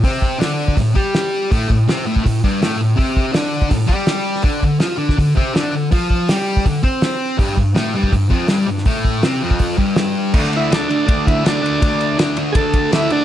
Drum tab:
CC |----------------|----------------|----------------|----------------|
RD |----------------|----------------|----------------|----------------|
HH |o---o---o---o---|o---o---o---o---|o---o---o---o---|o---o---o---o---|
SD |----o-------o---|----o-------o---|----o-------o--o|----o--o----o---|
BD |o-o----oo-o-----|o-o----oo-o-----|o-o----oo-o-----|o-o----oo-o-----|

CC |----------------|----------------|----------------|x---------------|
RD |----------------|----------------|----------------|--x-x-x-x-x-x-x-|
HH |o---o---o---o---|o---o---o---o---|o---o---o---o---|----------------|
SD |----o-------o---|----o-------o--o|----o-------o---|-o--o-------o---|
BD |o-o----oo-o-----|o-o----oo-o-----|o-o----oo-o-----|o-------o-o-----|

CC |----------------|
RD |x-x-x-x-x-x-x-x-|
HH |----------------|
SD |----o-------o---|
BD |o-------o-o-----|